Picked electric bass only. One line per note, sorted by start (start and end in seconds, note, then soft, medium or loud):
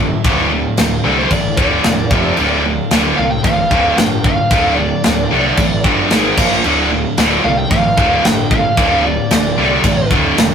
0.00 0.10 G1 medium
0.25 0.64 D1 medium
0.78 0.98 D1 loud
1.05 1.24 C2 medium
1.31 1.50 A1 medium
1.57 1.77 D1 medium
1.85 2.04 E1 medium
2.11 2.30 F1 medium
2.39 2.77 D1 medium
2.91 3.11 D1 loud
3.19 3.38 C2 medium
3.44 3.64 A1 medium
3.71 3.91 D1 medium
3.98 4.37 G1 medium
4.51 4.90 D1 loud
5.06 5.25 D1 loud
5.31 5.51 C2 medium
5.58 5.78 A1 medium
5.85 6.11 G1 medium
6.11 6.30 G#1 medium
6.38 6.57 A#1 medium
6.65 7.04 D1 medium
7.18 7.37 D1 loud
7.45 7.64 C2 medium
7.71 7.91 A1 medium
7.98 8.17 D1 medium
8.25 8.64 G1 medium
8.78 9.17 D1 loud
9.31 9.51 D1 loud
9.58 9.78 C2 medium
9.84 10.04 A1 medium
10.11 10.31 D1 medium
10.38 10.55 E1 medium